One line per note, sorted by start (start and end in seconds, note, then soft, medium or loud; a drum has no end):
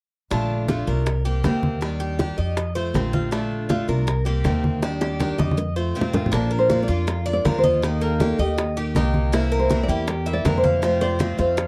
0.31 0.84 A#1 medium
0.31 0.68 D3 medium
0.31 0.68 A3 medium
0.31 0.68 D4 medium
0.31 0.69 F4 medium
0.31 high bongo medium
0.31 high conga soft
0.50 high conga soft
0.68 0.87 D3 medium
0.68 0.87 A3 medium
0.68 0.87 D4 medium
0.68 0.87 F4 medium
0.68 0.86 F4 medium
0.68 high bongo soft
0.68 high conga medium
0.87 1.40 C2 medium
0.87 1.06 A3 soft
0.87 1.06 D4 soft
0.87 1.06 F4 soft
0.87 1.24 A#4 medium
0.87 high conga soft
1.06 muted steel-string acoustic guitar stroke medium
1.06 high bongo medium
1.06 high conga soft
1.25 1.44 A#3 soft
1.25 1.44 C4 soft
1.25 1.43 G4 soft
1.25 1.62 G4 medium
1.25 high conga soft
1.44 2.32 D#2 medium
1.44 1.81 C3 medium
1.44 1.80 D#3 medium
1.44 1.81 A#3 medium
1.44 1.81 C4 medium
1.44 1.81 G4 medium
1.44 high bongo medium
1.44 low bongo medium
1.44 high conga medium
1.63 high conga medium
1.81 2.17 D#3 medium
1.81 2.18 G3 medium
1.81 2.19 D4 medium
1.81 2.19 G4 medium
1.81 high bongo medium
1.81 high conga soft
2.00 2.37 G4 medium
2.00 high conga soft
2.19 2.37 D#3 medium
2.19 2.37 G3 medium
2.19 2.38 D4 medium
2.19 2.37 G4 medium
2.19 high bongo soft
2.19 high conga medium
2.38 2.91 F2 medium
2.38 2.57 G3 soft
2.38 2.57 D4 soft
2.38 2.56 G4 soft
2.38 2.74 D#5 medium
2.38 high bongo soft
2.38 high conga soft
2.57 muted steel-string acoustic guitar stroke medium
2.57 high bongo medium
2.57 high conga soft
2.75 2.94 A3 soft
2.75 2.94 C4 soft
2.75 2.94 F4 soft
2.75 3.12 C5 medium
2.75 high bongo soft
2.75 high conga soft
2.94 3.82 A#1 medium
2.94 3.31 C3 medium
2.94 3.31 D#3 medium
2.94 3.31 A3 medium
2.94 3.32 C4 medium
2.94 3.32 F4 medium
2.94 high bongo medium
2.94 low bongo medium
2.94 high conga medium
3.13 3.31 F4 medium
3.13 high bongo soft
3.13 high conga medium
3.31 3.68 D3 medium
3.31 3.68 A3 medium
3.31 3.68 D4 medium
3.31 3.69 D4 medium
3.31 3.69 F4 medium
3.31 high bongo medium
3.31 high conga soft
3.51 high conga soft
3.69 3.87 D3 medium
3.69 3.88 A3 medium
3.69 3.87 D4 medium
3.69 3.88 F4 medium
3.69 3.87 F4 medium
3.69 high bongo soft
3.69 high conga medium
3.88 4.41 C2 medium
3.88 4.07 A3 soft
3.88 4.07 D4 soft
3.88 4.06 F4 soft
3.88 4.25 A#4 medium
3.88 high conga soft
4.07 muted steel-string acoustic guitar stroke medium
4.07 high bongo medium
4.07 high conga soft
4.25 4.44 A#3 soft
4.25 4.44 C4 soft
4.25 4.44 G4 soft
4.25 4.62 G4 medium
4.25 high conga soft
4.44 5.33 D#2 medium
4.44 4.81 C3 medium
4.44 4.81 D#3 medium
4.44 4.82 A#3 medium
4.44 4.82 C4 medium
4.44 4.82 G4 medium
4.44 high bongo medium
4.44 low bongo medium
4.44 high conga medium
4.64 high conga medium
4.82 5.18 D#3 medium
4.82 5.19 G3 medium
4.82 5.20 D4 medium
4.82 5.20 G4 medium
4.82 high bongo medium
4.82 high conga soft
5.01 5.37 G4 medium
5.01 high bongo medium
5.01 high conga soft
5.19 5.38 D#3 medium
5.19 5.38 G3 medium
5.19 5.38 D4 medium
5.19 5.37 G4 medium
5.19 low bongo medium
5.19 high conga medium
5.38 5.91 F2 medium
5.38 5.57 G3 soft
5.38 5.57 D4 soft
5.38 5.56 G4 soft
5.38 5.75 D#5 medium
5.38 high bongo medium
5.38 high conga medium
5.51 high conga medium
5.57 muted steel-string acoustic guitar stroke medium
5.57 low bongo medium
5.76 5.95 A3 soft
5.76 5.94 C4 soft
5.76 5.94 F4 soft
5.76 6.13 C5 medium
5.95 6.32 C3 medium
5.95 6.32 D#3 medium
5.95 6.32 A3 medium
5.95 6.33 C4 medium
5.95 6.33 F4 medium
6.01 low conga medium
6.13 6.32 F4 medium
6.13 low bongo medium
6.13 low conga medium
6.26 low conga medium
6.32 6.85 A#1 medium
6.32 6.68 F3 medium
6.32 6.69 A#3 medium
6.32 6.50 D4 medium
6.32 6.70 D4 medium
6.32 6.70 F4 medium
6.32 6.59 A#4 medium
6.32 high bongo medium
6.51 6.87 A#4 medium
6.51 high conga soft
6.59 6.82 C5 medium
6.69 6.88 F3 medium
6.69 6.88 A#3 medium
6.69 6.88 D4 medium
6.69 6.88 F4 medium
6.69 high bongo soft
6.69 high conga medium
6.83 7.06 D5 loud
6.88 7.41 F2 medium
6.88 7.06 A#3 soft
6.88 7.06 D4 soft
6.88 7.25 F4 medium
6.88 7.07 F4 soft
6.88 high conga soft
7.07 7.31 A#4 medium
7.07 muted steel-string acoustic guitar stroke medium
7.07 high bongo medium
7.07 high conga soft
7.26 7.44 A#3 soft
7.26 7.45 D4 soft
7.26 7.44 F4 soft
7.26 7.44 D5 medium
7.26 high conga soft
7.33 7.58 D5 medium
7.45 8.33 D#2 medium
7.45 7.82 F3 medium
7.45 7.82 A#3 medium
7.45 7.82 D4 medium
7.45 7.83 F4 medium
7.45 7.63 A#4 medium
7.45 high bongo medium
7.45 low bongo medium
7.45 high conga medium
7.59 7.81 C5 medium
7.64 8.00 D#5 medium
7.64 high conga medium
7.82 8.19 D#3 medium
7.82 8.19 A#3 medium
7.82 8.20 D#4 medium
7.82 8.20 G4 medium
7.82 8.03 A#4 medium
7.82 high bongo medium
8.01 8.38 A#3 medium
8.01 8.40 A4 medium
8.01 high conga soft
8.20 8.38 D#3 medium
8.20 8.38 A#3 medium
8.20 8.38 D#4 medium
8.20 8.37 G4 medium
8.20 high bongo soft
8.20 high conga medium
8.38 8.91 D#2 medium
8.38 8.57 A#3 soft
8.38 8.57 D#4 soft
8.38 8.57 G4 soft
8.38 8.92 G4 medium
8.38 8.76 D#5 medium
8.38 high bongo soft
8.38 high conga soft
8.58 muted steel-string acoustic guitar stroke medium
8.58 high bongo medium
8.58 high conga soft
8.77 8.95 A#3 soft
8.77 8.95 D#4 soft
8.77 8.95 G4 soft
8.77 8.95 G4 medium
8.77 high bongo soft
8.77 high conga soft
8.95 9.83 C2 medium
8.95 9.32 D#3 medium
8.95 9.32 A#3 medium
8.95 9.32 D#4 medium
8.95 9.33 D#4 medium
8.95 9.33 G4 medium
8.95 high bongo medium
8.95 low bongo medium
8.95 high conga medium
9.14 high bongo soft
9.14 high conga medium
9.32 9.68 C3 medium
9.32 9.69 E3 medium
9.32 9.69 A#3 medium
9.32 9.70 C4 medium
9.32 9.51 E4 medium
9.32 9.70 E4 medium
9.32 9.59 A#4 medium
9.32 high bongo medium
9.52 9.88 A#4 medium
9.52 high conga soft
9.59 9.83 C5 medium
9.70 9.88 C3 medium
9.70 9.88 E3 medium
9.70 9.88 A#3 medium
9.70 9.88 C4 medium
9.70 9.87 E4 medium
9.70 high bongo soft
9.70 high conga medium
9.83 10.06 D5 medium
9.88 10.41 E2 loud
9.88 10.07 A#3 soft
9.88 10.07 C4 soft
9.88 10.07 E4 soft
9.88 10.25 G4 medium
9.88 high conga soft
10.07 10.34 A#4 medium
10.07 muted steel-string acoustic guitar stroke medium
10.07 high bongo medium
10.07 high conga soft
10.26 10.44 A#3 soft
10.26 10.45 C4 soft
10.26 10.44 E4 soft
10.26 10.44 E5 medium
10.26 high conga soft
10.33 10.57 D5 medium
10.45 11.33 F2 medium
10.45 10.81 C3 medium
10.45 10.82 E3 medium
10.45 10.82 A#3 medium
10.45 10.82 C4 medium
10.45 10.82 E4 medium
10.45 10.63 A#4 medium
10.45 high bongo medium
10.45 low bongo medium
10.45 high conga medium
10.58 10.83 C5 medium
10.64 11.00 F5 medium
10.64 high conga medium
10.82 11.18 C3 medium
10.82 11.18 F3 medium
10.82 11.19 A3 medium
10.82 11.19 C4 medium
10.82 11.20 F4 medium
10.82 11.01 C5 medium
10.82 high bongo medium
10.82 high conga soft
11.01 11.38 C5 medium
11.01 11.36 D5 medium
11.01 high conga soft
11.19 11.37 C3 medium
11.19 11.38 F3 medium
11.19 11.38 A3 medium
11.19 11.38 C4 medium
11.19 11.36 F4 medium
11.19 high bongo soft
11.19 high conga medium
11.38 11.67 F2 medium
11.38 11.56 A3 soft
11.38 11.57 C4 soft
11.38 11.56 F4 soft
11.38 11.67 C5 medium
11.38 11.67 F5 medium
11.38 high bongo soft
11.38 high conga soft
11.57 muted steel-string acoustic guitar stroke medium
11.57 high bongo medium
11.57 high conga soft